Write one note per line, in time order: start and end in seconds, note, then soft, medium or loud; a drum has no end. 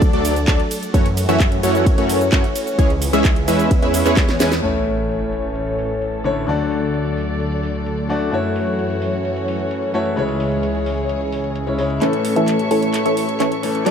0.00 0.11 D2 loud
0.00 0.11 F#3 medium
0.00 0.92 F#3 medium
0.00 0.11 A3 medium
0.00 2.75 A3 medium
0.00 0.11 D4 medium
0.00 0.92 D4 medium
0.00 0.11 A4 medium
0.00 0.90 A4 medium
0.00 0.11 D5 loud
0.00 0.92 D5 medium
0.00 kick loud
0.00 closed hi-hat medium
0.00 ride medium
0.00 cabasa soft
0.13 0.46 D2 medium
0.13 0.33 F#3 medium
0.13 0.33 A3 medium
0.13 0.33 D4 medium
0.13 0.33 A4 medium
0.13 0.33 D5 medium
0.13 closed hi-hat soft
0.25 open hi-hat loud
0.25 ride medium
0.25 cabasa medium
0.36 closed hi-hat soft
0.36 cabasa soft
0.48 0.58 D2 loud
0.48 0.60 F#3 loud
0.48 0.60 A3 medium
0.48 0.60 D4 medium
0.48 0.60 A4 medium
0.48 0.60 D5 loud
0.48 kick loud
0.48 clap loud
0.48 closed hi-hat medium
0.48 ride medium
0.48 cabasa soft
0.60 closed hi-hat soft
0.71 open hi-hat medium
0.71 ride medium
0.71 cabasa medium
0.83 closed hi-hat soft
0.83 cabasa soft
0.94 1.26 F#2 loud
0.94 1.07 E3 loud
0.94 4.60 E3 medium
0.94 1.07 A3 medium
0.94 1.07 C#4 medium
0.94 3.68 C#4 medium
0.94 1.07 F#4 loud
0.94 2.77 F#4 medium
0.94 1.07 C#5 loud
0.94 3.68 C#5 medium
0.94 kick loud
0.94 closed hi-hat medium
0.94 ride medium
0.94 cabasa soft
1.06 closed hi-hat soft
1.17 open hi-hat loud
1.17 ride medium
1.17 cabasa medium
1.29 1.61 F#2 medium
1.29 1.49 E3 loud
1.29 1.49 A3 medium
1.29 1.49 C#4 medium
1.29 1.49 F#4 medium
1.29 1.49 E5 loud
1.29 closed hi-hat soft
1.29 cabasa soft
1.40 kick loud
1.40 clap loud
1.40 closed hi-hat medium
1.40 ride medium
1.40 cabasa soft
1.52 closed hi-hat soft
1.63 1.96 F#2 loud
1.63 1.95 E3 medium
1.63 1.95 A3 medium
1.63 1.95 C#4 medium
1.63 1.95 F#4 medium
1.63 1.95 C#5 medium
1.63 open hi-hat medium
1.63 ride medium
1.63 cabasa medium
1.75 closed hi-hat soft
1.75 cabasa soft
1.86 kick loud
1.86 closed hi-hat medium
1.86 ride medium
1.86 cabasa soft
1.98 2.30 F#2 loud
1.98 2.18 E3 medium
1.98 2.18 A3 medium
1.98 2.18 C#4 medium
1.98 2.18 F#4 medium
1.98 2.18 C#5 medium
1.98 closed hi-hat soft
2.10 open hi-hat loud
2.10 ride medium
2.10 cabasa medium
2.21 closed hi-hat soft
2.21 cabasa soft
2.32 2.43 F#2 loud
2.32 2.45 E3 loud
2.32 2.45 A3 loud
2.32 2.45 C#4 medium
2.32 2.45 F#4 medium
2.32 2.45 C#5 loud
2.32 kick loud
2.32 clap loud
2.32 closed hi-hat medium
2.32 ride medium
2.32 cabasa soft
2.44 closed hi-hat soft
2.56 open hi-hat medium
2.56 ride medium
2.56 cabasa medium
2.67 closed hi-hat soft
2.67 cabasa soft
2.79 3.11 C#2 loud
2.79 2.91 E3 loud
2.79 3.70 G#3 medium
2.79 2.91 G#3 medium
2.79 2.91 C#4 medium
2.79 2.91 G#4 medium
2.79 4.61 G#4 medium
2.79 2.91 C#5 loud
2.79 kick loud
2.79 closed hi-hat medium
2.79 ride medium
2.79 cabasa soft
2.90 closed hi-hat soft
3.02 open hi-hat loud
3.02 ride medium
3.02 cabasa medium
3.13 3.46 C#2 loud
3.13 3.33 E3 loud
3.13 3.33 G#3 loud
3.13 3.33 C#4 loud
3.13 3.33 G#4 loud
3.13 3.33 E5 loud
3.13 closed hi-hat soft
3.13 cabasa soft
3.25 kick loud
3.25 clap loud
3.25 closed hi-hat medium
3.25 ride medium
3.25 cabasa soft
3.36 closed hi-hat soft
3.48 3.80 E2 loud
3.48 3.80 G#3 medium
3.48 3.80 C#4 medium
3.48 3.80 E4 medium
3.48 3.80 B4 medium
3.48 3.80 E5 medium
3.48 open hi-hat medium
3.48 ride medium
3.48 cabasa medium
3.59 closed hi-hat soft
3.59 cabasa soft
3.71 4.62 B3 medium
3.71 4.62 C#4 medium
3.71 4.62 C#5 medium
3.71 kick loud
3.71 closed hi-hat medium
3.71 ride medium
3.71 cabasa soft
3.82 4.03 E2 loud
3.82 4.03 G#3 medium
3.82 4.03 C#4 medium
3.82 4.03 E4 medium
3.82 4.03 B4 medium
3.82 4.03 E5 medium
3.82 closed hi-hat soft
3.94 open hi-hat loud
3.94 ride medium
3.94 cabasa medium
4.05 4.38 E2 medium
4.05 4.37 G#3 medium
4.05 4.37 C#4 medium
4.05 4.37 E4 medium
4.05 4.37 B4 medium
4.05 4.37 C#5 medium
4.05 clap soft
4.05 closed hi-hat soft
4.05 cabasa soft
4.17 kick loud
4.17 snare medium
4.17 clap loud
4.17 closed hi-hat medium
4.17 ride medium
4.17 cabasa soft
4.29 snare medium
4.29 closed hi-hat soft
4.40 4.61 E2 loud
4.40 4.53 G#3 medium
4.40 4.53 C#4 medium
4.40 4.53 E4 medium
4.40 4.53 B4 medium
4.40 4.53 G#5 medium
4.40 snare medium
4.40 open hi-hat loud
4.40 ride medium
4.40 cabasa medium
4.52 snare medium
4.52 closed hi-hat soft
4.52 cabasa soft
4.62 6.46 A1 medium
4.62 6.21 A2 medium
4.62 6.46 E3 medium
4.62 6.22 A3 medium
4.62 6.46 A3 medium
4.62 6.46 C#4 medium
4.62 6.22 C#4 medium
4.62 6.22 E4 medium
4.62 8.29 A4 medium
4.62 6.46 C#5 medium
4.62 6.23 C#5 medium
4.62 crash medium
4.62 sub drop medium
4.86 open hi-hat loud
5.09 closed hi-hat medium
5.21 closed hi-hat soft
5.32 open hi-hat medium
5.44 closed hi-hat soft
5.56 closed hi-hat medium
5.67 closed hi-hat soft
5.79 open hi-hat loud
5.90 closed hi-hat soft
6.02 closed hi-hat medium
6.13 closed hi-hat soft
6.24 6.45 D3 medium
6.24 6.45 A3 medium
6.24 6.45 C#4 medium
6.24 6.45 E4 medium
6.24 6.45 C#5 medium
6.24 open hi-hat medium
6.36 closed hi-hat soft
6.47 8.30 D2 medium
6.47 8.06 D3 medium
6.47 8.31 F#3 medium
6.47 8.06 A3 medium
6.47 10.13 A3 medium
6.47 8.07 D4 medium
6.47 8.31 D4 medium
6.47 8.07 F#4 medium
6.47 8.31 D5 medium
6.47 8.07 D5 medium
6.47 closed hi-hat medium
6.59 closed hi-hat soft
6.71 open hi-hat loud
6.83 closed hi-hat soft
6.94 closed hi-hat medium
7.06 closed hi-hat soft
7.17 open hi-hat medium
7.40 closed hi-hat medium
7.52 closed hi-hat soft
7.63 open hi-hat loud
7.75 closed hi-hat soft
7.86 closed hi-hat medium
7.98 closed hi-hat soft
8.09 8.30 A3 medium
8.09 8.30 D4 medium
8.09 8.30 F#4 medium
8.09 8.30 D5 medium
8.09 open hi-hat medium
8.21 closed hi-hat soft
8.31 10.15 F#2 medium
8.31 11.98 E3 medium
8.31 9.91 A3 medium
8.31 11.98 C#4 medium
8.31 9.91 E4 medium
8.31 10.15 F#4 medium
8.31 9.92 F#4 medium
8.31 10.15 C#5 medium
8.31 9.92 C#5 medium
8.31 closed hi-hat medium
8.44 closed hi-hat soft
8.56 open hi-hat loud
8.67 closed hi-hat soft
8.79 closed hi-hat medium
8.90 closed hi-hat soft
9.02 open hi-hat medium
9.13 closed hi-hat soft
9.25 closed hi-hat medium
9.37 closed hi-hat soft
9.48 open hi-hat loud
9.60 closed hi-hat soft
9.71 closed hi-hat medium
9.83 closed hi-hat soft
9.94 10.14 A3 medium
9.94 10.14 E4 medium
9.94 10.14 F#4 medium
9.94 10.15 C#5 loud
9.94 open hi-hat medium
10.06 closed hi-hat soft
10.16 11.99 C#2 medium
10.16 11.64 C#3 medium
10.16 11.65 G#3 medium
10.16 12.00 G#3 medium
10.16 11.65 C#4 medium
10.16 11.65 E4 medium
10.16 12.00 G#4 medium
10.16 12.00 C#5 medium
10.16 11.65 C#5 loud
10.16 closed hi-hat medium
10.29 closed hi-hat soft
10.40 open hi-hat loud
10.52 closed hi-hat soft
10.63 closed hi-hat medium
10.75 closed hi-hat soft
10.86 open hi-hat medium
10.98 closed hi-hat soft
11.09 closed hi-hat medium
11.21 closed hi-hat soft
11.32 open hi-hat loud
11.44 closed hi-hat soft
11.56 closed hi-hat medium
11.67 11.76 C#3 medium
11.67 11.76 G#3 medium
11.67 11.76 C#4 medium
11.67 11.76 E4 medium
11.67 11.76 C#5 medium
11.67 closed hi-hat soft
11.78 11.99 G#3 medium
11.78 11.99 C#4 medium
11.78 11.99 E4 medium
11.78 11.99 C#5 medium
11.78 open hi-hat medium
11.90 closed hi-hat soft
12.00 12.34 A1 loud
12.00 13.60 A2 medium
12.00 13.60 E3 medium
12.00 12.14 E3 medium
12.00 13.60 A3 medium
12.00 12.14 A3 medium
12.00 12.14 C#4 medium
12.00 13.61 C#4 medium
12.00 13.91 A4 medium
12.00 12.14 A4 medium
12.00 13.61 A4 loud
12.00 13.84 C#5 medium
12.00 12.14 C#5 loud
12.00 13.84 E5 medium
12.00 13.84 C#6 medium
12.00 clap soft
12.00 closed hi-hat medium
12.13 closed hi-hat soft
12.25 open hi-hat loud
12.36 12.69 A1 medium
12.36 12.56 E3 loud
12.36 12.56 A3 medium
12.36 12.56 C#4 medium
12.36 12.56 A4 medium
12.36 12.56 E5 loud
12.36 closed hi-hat soft
12.48 clap soft
12.48 closed hi-hat medium
12.59 closed hi-hat soft
12.71 13.03 A1 medium
12.71 13.03 E3 medium
12.71 13.03 A3 medium
12.71 13.03 C#4 medium
12.71 13.03 A4 medium
12.71 13.03 C#5 medium
12.71 open hi-hat medium
12.83 closed hi-hat soft
12.94 clap soft
12.94 closed hi-hat medium
13.06 13.38 A1 medium
13.06 13.26 E3 medium
13.06 13.26 A3 medium
13.06 13.26 C#4 medium
13.06 13.26 A4 medium
13.06 13.26 C#5 medium
13.06 closed hi-hat soft
13.17 open hi-hat loud
13.29 closed hi-hat soft
13.40 13.50 A1 medium
13.40 13.53 E3 medium
13.40 13.53 A3 medium
13.40 13.53 C#4 medium
13.40 13.53 A4 medium
13.40 13.53 C#5 loud
13.40 clap medium
13.40 closed hi-hat medium
13.52 closed hi-hat soft
13.63 13.83 E3 medium
13.63 13.83 A3 medium
13.63 13.84 C#4 medium
13.63 13.84 A4 loud
13.63 open hi-hat medium
13.75 closed hi-hat soft
13.85 13.91 D2 medium
13.85 13.91 F#3 medium
13.85 13.91 A3 medium
13.85 13.91 D4 medium
13.85 13.91 A4 medium
13.85 13.91 A4 loud
13.85 13.91 D5 loud
13.85 13.91 D5 medium
13.85 13.91 F#5 medium
13.85 13.91 D6 medium
13.85 clap soft
13.85 closed hi-hat medium